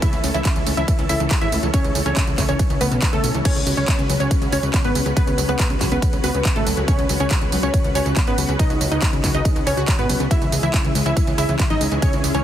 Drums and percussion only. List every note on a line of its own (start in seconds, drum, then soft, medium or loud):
0.02 kick loud
0.02 closed hi-hat loud
0.02 ride medium
0.02 tambourine soft
0.13 closed hi-hat soft
0.13 tambourine soft
0.24 open hi-hat loud
0.24 tambourine medium
0.34 closed hi-hat soft
0.34 tambourine soft
0.45 kick loud
0.45 clap loud
0.45 closed hi-hat loud
0.45 ride medium
0.45 tambourine soft
0.56 closed hi-hat soft
0.56 tambourine soft
0.67 open hi-hat loud
0.67 tambourine medium
0.77 closed hi-hat soft
0.77 tambourine soft
0.88 kick loud
0.88 closed hi-hat loud
0.88 ride medium
0.88 tambourine soft
0.99 closed hi-hat soft
0.99 tambourine soft
1.09 open hi-hat loud
1.09 tambourine medium
1.20 closed hi-hat soft
1.20 tambourine soft
1.31 kick loud
1.31 clap loud
1.31 closed hi-hat loud
1.31 ride medium
1.31 tambourine soft
1.42 closed hi-hat soft
1.42 tambourine soft
1.52 open hi-hat loud
1.52 tambourine medium
1.63 closed hi-hat soft
1.63 tambourine soft
1.74 kick loud
1.74 closed hi-hat loud
1.74 ride medium
1.74 tambourine soft
1.84 closed hi-hat soft
1.84 tambourine soft
1.95 open hi-hat loud
1.95 tambourine medium
2.06 closed hi-hat soft
2.06 tambourine soft
2.17 kick loud
2.17 clap loud
2.17 closed hi-hat loud
2.17 ride medium
2.17 tambourine soft
2.27 closed hi-hat soft
2.27 tambourine soft
2.38 kick medium
2.38 clap soft
2.38 open hi-hat loud
2.38 tambourine medium
2.49 closed hi-hat soft
2.49 tambourine soft
2.59 kick loud
2.59 closed hi-hat loud
2.59 ride medium
2.59 tambourine soft
2.70 closed hi-hat soft
2.70 tambourine soft
2.81 open hi-hat loud
2.81 tambourine medium
2.92 closed hi-hat soft
2.92 tambourine soft
3.02 kick loud
3.02 clap loud
3.02 closed hi-hat loud
3.02 ride medium
3.02 tambourine soft
3.13 closed hi-hat soft
3.13 tambourine soft
3.24 open hi-hat loud
3.24 tambourine medium
3.35 closed hi-hat soft
3.35 tambourine soft
3.45 kick loud
3.45 closed hi-hat loud
3.45 crash medium
3.45 ride medium
3.45 tambourine soft
3.56 closed hi-hat soft
3.56 tambourine soft
3.67 open hi-hat loud
3.67 tambourine medium
3.77 closed hi-hat soft
3.77 tambourine soft
3.88 kick loud
3.88 clap loud
3.88 closed hi-hat loud
3.88 ride medium
3.88 tambourine soft
3.99 closed hi-hat soft
3.99 tambourine soft
4.10 open hi-hat loud
4.10 tambourine medium
4.20 closed hi-hat soft
4.20 tambourine soft
4.31 kick loud
4.31 closed hi-hat loud
4.31 ride medium
4.31 tambourine soft
4.42 closed hi-hat soft
4.42 tambourine soft
4.52 open hi-hat loud
4.52 tambourine medium
4.63 closed hi-hat soft
4.63 tambourine soft
4.74 kick loud
4.74 clap loud
4.74 closed hi-hat loud
4.74 ride medium
4.74 tambourine soft
4.84 closed hi-hat soft
4.84 tambourine soft
4.95 open hi-hat loud
4.95 tambourine medium
5.06 closed hi-hat soft
5.06 tambourine soft
5.17 kick loud
5.17 closed hi-hat loud
5.17 ride medium
5.17 tambourine soft
5.27 closed hi-hat soft
5.27 tambourine soft
5.38 open hi-hat loud
5.38 tambourine medium
5.49 closed hi-hat soft
5.49 tambourine soft
5.59 kick loud
5.59 clap loud
5.59 closed hi-hat loud
5.59 ride medium
5.59 tambourine soft
5.70 closed hi-hat soft
5.70 tambourine soft
5.81 kick medium
5.81 clap soft
5.81 open hi-hat loud
5.81 tambourine medium
5.92 closed hi-hat soft
5.92 tambourine soft
6.02 kick loud
6.02 closed hi-hat loud
6.02 ride medium
6.02 tambourine soft
6.13 closed hi-hat soft
6.13 tambourine soft
6.24 open hi-hat loud
6.24 tambourine medium
6.34 closed hi-hat soft
6.34 tambourine soft
6.45 kick loud
6.45 clap loud
6.45 closed hi-hat medium
6.45 ride medium
6.45 tambourine soft
6.56 closed hi-hat soft
6.56 tambourine soft
6.67 open hi-hat loud
6.67 tambourine medium
6.77 closed hi-hat soft
6.77 tambourine soft
6.88 kick loud
6.88 closed hi-hat loud
6.88 ride medium
6.88 tambourine soft
6.99 closed hi-hat soft
6.99 tambourine soft
7.09 open hi-hat loud
7.09 tambourine medium
7.20 tambourine soft
7.31 kick loud
7.31 clap loud
7.31 closed hi-hat medium
7.31 ride medium
7.31 tambourine soft
7.42 closed hi-hat soft
7.42 tambourine soft
7.52 open hi-hat loud
7.52 tambourine medium
7.63 closed hi-hat soft
7.63 tambourine soft
7.74 kick loud
7.74 closed hi-hat medium
7.74 ride medium
7.74 tambourine soft
7.84 closed hi-hat soft
7.84 tambourine soft
7.95 open hi-hat loud
7.95 tambourine medium
8.06 closed hi-hat soft
8.06 tambourine soft
8.17 kick loud
8.17 clap loud
8.17 closed hi-hat medium
8.17 ride medium
8.17 tambourine soft
8.27 closed hi-hat soft
8.27 tambourine soft
8.38 open hi-hat loud
8.38 tambourine medium
8.49 closed hi-hat soft
8.49 tambourine soft
8.59 kick loud
8.59 closed hi-hat medium
8.59 ride medium
8.59 tambourine soft
8.70 closed hi-hat soft
8.70 tambourine soft
8.81 open hi-hat loud
8.81 tambourine medium
8.92 closed hi-hat soft
8.92 tambourine soft
9.02 kick loud
9.02 clap loud
9.02 closed hi-hat medium
9.02 ride medium
9.02 tambourine soft
9.13 closed hi-hat soft
9.13 tambourine soft
9.24 kick medium
9.24 clap soft
9.24 open hi-hat loud
9.24 tambourine medium
9.35 closed hi-hat soft
9.35 tambourine soft
9.45 kick loud
9.45 closed hi-hat medium
9.45 ride medium
9.45 tambourine soft
9.56 closed hi-hat soft
9.56 tambourine soft
9.67 open hi-hat loud
9.67 tambourine medium
9.77 closed hi-hat soft
9.77 tambourine soft
9.88 kick loud
9.88 clap loud
9.88 closed hi-hat medium
9.88 ride medium
9.88 tambourine soft
9.99 closed hi-hat soft
9.99 tambourine soft
10.09 open hi-hat loud
10.09 tambourine medium
10.20 closed hi-hat soft
10.20 tambourine soft
10.31 kick loud
10.31 closed hi-hat medium
10.31 ride medium
10.31 tambourine soft
10.42 closed hi-hat soft
10.42 tambourine soft
10.52 open hi-hat loud
10.52 tambourine medium
10.63 closed hi-hat soft
10.63 tambourine soft
10.74 kick loud
10.74 clap loud
10.74 closed hi-hat medium
10.74 ride medium
10.74 tambourine soft
10.85 closed hi-hat soft
10.85 tambourine soft
10.95 open hi-hat loud
10.95 tambourine medium
11.06 closed hi-hat soft
11.06 tambourine soft
11.17 kick loud
11.17 closed hi-hat medium
11.17 ride medium
11.17 tambourine soft
11.27 closed hi-hat soft
11.27 tambourine soft
11.38 open hi-hat loud
11.38 tambourine medium
11.49 closed hi-hat soft
11.49 tambourine soft
11.59 kick loud
11.59 clap loud
11.59 closed hi-hat medium
11.59 ride medium
11.59 tambourine soft
11.70 closed hi-hat soft
11.70 tambourine soft
11.81 open hi-hat loud
11.81 tambourine medium
11.92 closed hi-hat soft
11.92 tambourine soft
12.02 kick loud
12.02 closed hi-hat medium
12.02 ride medium
12.02 tambourine soft
12.13 closed hi-hat soft
12.13 tambourine soft
12.24 open hi-hat loud
12.24 tambourine medium
12.35 closed hi-hat soft
12.35 tambourine soft